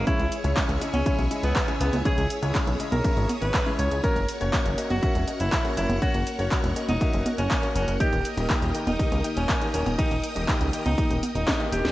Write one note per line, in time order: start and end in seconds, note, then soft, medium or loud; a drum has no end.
0.00 4.00 G#4 medium
0.00 7.96 C#5 medium
0.07 0.20 C#3 medium
0.07 0.20 G#3 medium
0.07 0.20 C#4 medium
0.07 0.36 E4 loud
0.07 0.20 E4 medium
0.07 0.20 C#5 medium
0.07 4.00 E5 medium
0.07 2.03 C#6 medium
0.07 kick loud
0.07 closed hi-hat medium
0.19 0.29 C#2 medium
0.19 closed hi-hat soft
0.32 closed hi-hat medium
0.44 0.54 C#2 medium
0.44 0.78 C#3 medium
0.44 0.78 G#3 medium
0.44 0.78 C#4 medium
0.44 0.78 E4 medium
0.44 0.78 C#5 loud
0.44 closed hi-hat soft
0.56 kick loud
0.56 clap loud
0.56 closed hi-hat medium
0.69 0.78 C#2 medium
0.69 closed hi-hat soft
0.81 0.94 C#3 medium
0.81 0.94 G#3 medium
0.81 0.94 C#4 medium
0.81 0.94 E4 medium
0.81 0.94 D#5 medium
0.81 closed hi-hat medium
0.94 1.03 C#2 medium
0.94 1.33 C#4 loud
0.94 closed hi-hat soft
0.94 high conga medium
1.06 1.28 C#3 medium
1.06 1.28 G#3 medium
1.06 1.28 C#4 medium
1.06 1.28 E4 medium
1.06 1.28 E5 medium
1.06 kick loud
1.06 closed hi-hat medium
1.18 1.28 B1 medium
1.18 closed hi-hat soft
1.31 1.44 C#3 medium
1.31 1.44 G#3 medium
1.31 1.44 C#4 medium
1.31 1.44 E4 medium
1.31 1.44 D#5 medium
1.31 closed hi-hat medium
1.43 1.53 C#2 medium
1.43 1.73 B3 medium
1.43 closed hi-hat soft
1.56 kick loud
1.56 clap loud
1.56 closed hi-hat medium
1.68 2.02 C#3 medium
1.68 2.02 G#3 medium
1.68 2.02 C#4 medium
1.68 2.02 E4 medium
1.68 2.02 C#5 medium
1.68 closed hi-hat soft
1.80 1.90 C#2 medium
1.80 2.00 B3 medium
1.80 closed hi-hat medium
1.93 2.02 C#2 medium
1.93 closed hi-hat soft
1.93 high conga medium
2.05 2.18 C#3 medium
2.05 2.18 G#3 medium
2.05 2.18 C#4 medium
2.05 2.18 E4 medium
2.05 2.35 G#4 loud
2.05 2.18 C#5 loud
2.05 4.02 D#6 medium
2.05 kick loud
2.05 closed hi-hat medium
2.18 2.27 C#2 medium
2.18 closed hi-hat soft
2.30 closed hi-hat medium
2.42 2.52 C#2 medium
2.42 2.77 C#3 medium
2.42 2.77 G#3 medium
2.42 2.77 C#4 medium
2.42 2.77 E4 medium
2.42 2.77 C#5 loud
2.42 closed hi-hat soft
2.55 kick loud
2.55 clap loud
2.55 closed hi-hat medium
2.67 2.77 B1 medium
2.67 closed hi-hat soft
2.80 2.93 C#3 medium
2.80 2.93 G#3 medium
2.80 2.93 C#4 medium
2.80 2.93 E4 medium
2.80 2.93 D#5 medium
2.80 closed hi-hat medium
2.92 3.02 B1 medium
2.92 3.31 A#4 medium
2.92 closed hi-hat soft
2.92 high conga medium
3.04 3.26 C#3 medium
3.04 3.26 G#3 medium
3.04 3.26 C#4 medium
3.04 3.26 E4 medium
3.04 3.26 E5 medium
3.04 kick loud
3.04 closed hi-hat medium
3.17 3.26 G#1 medium
3.17 closed hi-hat soft
3.29 closed hi-hat medium
3.29 high conga medium
3.41 3.51 G#1 medium
3.41 3.71 B4 medium
3.41 closed hi-hat soft
3.54 kick loud
3.54 clap loud
3.54 closed hi-hat medium
3.66 4.01 C#3 medium
3.66 4.01 G#3 medium
3.66 4.01 C#4 medium
3.66 4.01 E4 medium
3.66 4.01 C#5 medium
3.66 closed hi-hat soft
3.79 3.88 C#2 medium
3.79 3.98 C#5 medium
3.79 closed hi-hat medium
3.91 4.01 C#2 medium
3.91 closed hi-hat soft
4.03 4.17 A#3 medium
4.03 4.17 C#4 medium
4.03 4.17 F#4 medium
4.03 4.33 A#4 loud
4.03 11.92 A#4 medium
4.03 4.17 C#5 loud
4.03 7.96 F#5 medium
4.03 7.96 C#6 medium
4.03 kick loud
4.03 closed hi-hat medium
4.16 4.26 F#1 medium
4.16 closed hi-hat soft
4.28 closed hi-hat medium
4.41 4.50 F#1 medium
4.41 4.75 A#3 medium
4.41 4.75 C#4 medium
4.41 4.75 F#4 medium
4.41 4.75 C#5 loud
4.41 closed hi-hat soft
4.53 kick loud
4.53 clap loud
4.53 closed hi-hat medium
4.65 4.75 F#1 medium
4.65 closed hi-hat soft
4.78 4.91 A#3 medium
4.78 4.91 C#4 medium
4.78 4.91 F#4 medium
4.78 4.91 D#5 medium
4.78 closed hi-hat medium
4.90 5.00 F#1 medium
4.90 5.30 F#4 loud
4.90 closed hi-hat soft
4.90 high conga medium
5.03 5.25 A#3 medium
5.03 5.25 C#4 medium
5.03 5.25 F#4 medium
5.03 5.25 E5 medium
5.03 kick loud
5.03 closed hi-hat medium
5.15 5.25 E1 medium
5.15 closed hi-hat soft
5.27 5.40 A#3 medium
5.27 5.40 C#4 medium
5.27 5.40 F#4 medium
5.27 5.40 D#5 medium
5.27 closed hi-hat medium
5.40 5.50 F#1 medium
5.40 5.70 E4 medium
5.40 closed hi-hat soft
5.52 kick loud
5.52 clap loud
5.52 closed hi-hat medium
5.65 5.99 A#3 medium
5.65 5.99 C#4 medium
5.65 5.99 F#4 medium
5.65 5.99 C#5 medium
5.65 closed hi-hat soft
5.77 5.87 F#1 medium
5.77 5.97 E4 medium
5.77 closed hi-hat medium
5.89 5.99 F#1 medium
5.89 closed hi-hat soft
5.89 high conga medium
6.02 6.15 A#3 medium
6.02 6.15 C#4 medium
6.02 6.31 F#4 loud
6.02 6.15 F#4 medium
6.02 6.15 C#5 loud
6.02 kick loud
6.02 closed hi-hat medium
6.14 6.24 F#1 medium
6.14 closed hi-hat soft
6.27 closed hi-hat medium
6.39 6.49 F#1 medium
6.39 6.73 A#3 medium
6.39 6.73 C#4 medium
6.39 6.73 F#4 medium
6.39 6.73 C#5 loud
6.39 closed hi-hat soft
6.51 kick loud
6.51 clap loud
6.51 closed hi-hat medium
6.64 6.73 E1 medium
6.64 closed hi-hat soft
6.76 6.89 A#3 medium
6.76 6.89 C#4 medium
6.76 6.89 F#4 medium
6.76 6.89 D#5 medium
6.76 closed hi-hat medium
6.88 6.98 E1 medium
6.88 7.28 D#4 loud
6.88 closed hi-hat soft
6.88 high conga medium
7.01 7.23 A#3 medium
7.01 7.23 C#4 medium
7.01 7.23 F#4 medium
7.01 7.23 E5 medium
7.01 kick loud
7.01 closed hi-hat medium
7.13 7.23 F#1 medium
7.13 closed hi-hat soft
7.26 7.39 A#3 medium
7.26 7.39 C#4 medium
7.26 7.39 F#4 medium
7.26 7.39 D#5 medium
7.26 closed hi-hat medium
7.26 high conga medium
7.38 7.48 F#1 medium
7.38 7.68 C#4 medium
7.38 closed hi-hat soft
7.51 kick loud
7.51 clap loud
7.51 closed hi-hat medium
7.63 7.97 A#3 medium
7.63 7.97 C#4 medium
7.63 7.97 F#4 medium
7.63 7.97 C#5 medium
7.63 closed hi-hat soft
7.75 7.85 F#1 medium
7.75 7.95 C#4 medium
7.75 closed hi-hat medium
7.88 7.97 F#1 medium
7.88 closed hi-hat soft
8.00 8.13 D#3 medium
8.00 8.13 A#3 medium
8.00 8.13 D#4 medium
8.00 8.13 G4 medium
8.00 8.30 G4 loud
8.00 8.13 D#5 loud
8.00 11.92 D#5 medium
8.00 11.92 G5 medium
8.00 11.92 D#6 medium
8.00 kick loud
8.00 closed hi-hat medium
8.12 8.22 D#1 medium
8.12 closed hi-hat soft
8.25 closed hi-hat medium
8.37 8.47 D#1 medium
8.37 8.72 D#3 loud
8.37 8.72 A#3 medium
8.37 8.72 D#4 medium
8.37 8.72 G4 medium
8.37 8.72 D#5 loud
8.37 closed hi-hat soft
8.50 kick loud
8.50 clap loud
8.50 closed hi-hat medium
8.62 8.72 D#1 medium
8.62 closed hi-hat soft
8.75 8.88 D#3 medium
8.75 8.88 A#3 medium
8.75 8.88 D#4 medium
8.75 8.88 G4 medium
8.75 8.88 G5 medium
8.75 closed hi-hat medium
8.87 8.97 D#1 medium
8.87 9.26 D#4 medium
8.87 closed hi-hat soft
8.87 high conga medium
8.99 9.21 D#3 medium
8.99 9.21 A#3 medium
8.99 9.21 D#4 medium
8.99 9.21 G4 medium
8.99 9.21 D#5 medium
8.99 kick loud
8.99 closed hi-hat medium
9.12 9.21 C#2 medium
9.12 closed hi-hat soft
9.24 9.37 D#3 medium
9.24 9.37 A#3 medium
9.24 9.37 D#4 medium
9.24 9.37 G4 medium
9.24 9.37 G5 medium
9.24 closed hi-hat medium
9.36 9.46 D#1 medium
9.36 9.66 C#4 medium
9.36 closed hi-hat soft
9.49 kick loud
9.49 clap loud
9.49 closed hi-hat medium
9.61 9.96 D#3 medium
9.61 9.96 A#3 medium
9.61 9.96 D#4 medium
9.61 9.96 G4 medium
9.61 9.96 D#5 medium
9.61 closed hi-hat soft
9.74 9.83 D#1 medium
9.74 9.94 C#4 medium
9.74 closed hi-hat medium
9.86 9.96 D#1 medium
9.86 closed hi-hat soft
9.86 high conga medium
9.99 10.12 D#3 medium
9.99 10.12 A#3 medium
9.99 10.28 D#4 loud
9.99 10.12 D#4 medium
9.99 10.12 G4 medium
9.99 10.12 D#5 loud
9.99 kick loud
9.99 closed hi-hat medium
10.11 10.21 D#1 medium
10.11 closed hi-hat soft
10.24 closed hi-hat medium
10.36 10.45 D#1 medium
10.36 10.70 D#3 medium
10.36 10.70 A#3 medium
10.36 10.70 D#4 medium
10.36 10.70 G4 medium
10.36 10.70 D#5 loud
10.36 closed hi-hat soft
10.48 kick loud
10.48 clap loud
10.48 closed hi-hat medium
10.61 10.70 C#2 medium
10.61 closed hi-hat soft
10.73 10.86 D#3 medium
10.73 10.86 A#3 medium
10.73 10.86 D#4 medium
10.73 10.86 G4 medium
10.73 10.86 G5 medium
10.73 closed hi-hat medium
10.85 10.95 C#2 medium
10.85 11.25 D#4 loud
10.85 closed hi-hat soft
10.85 high conga medium
10.98 11.20 D#3 medium
10.98 11.20 A#3 medium
10.98 11.20 D#4 medium
10.98 11.20 G4 medium
10.98 11.20 D#5 medium
10.98 kick loud
10.98 closed hi-hat medium
11.10 11.20 D#1 medium
11.10 closed hi-hat soft
11.23 closed hi-hat loud
11.23 high conga medium
11.35 11.45 D#1 medium
11.35 11.65 D#4 medium
11.35 closed hi-hat soft
11.47 kick loud
11.47 snare loud
11.47 clap loud
11.47 closed hi-hat medium
11.60 11.92 D#3 medium
11.60 11.92 A#3 medium
11.60 11.92 D#4 medium
11.60 11.92 G4 medium
11.60 11.92 D#5 medium
11.60 closed hi-hat soft
11.72 11.82 D#1 medium
11.72 11.92 G4 medium
11.72 closed hi-hat medium
11.85 11.92 D#1 medium
11.85 snare medium
11.85 closed hi-hat soft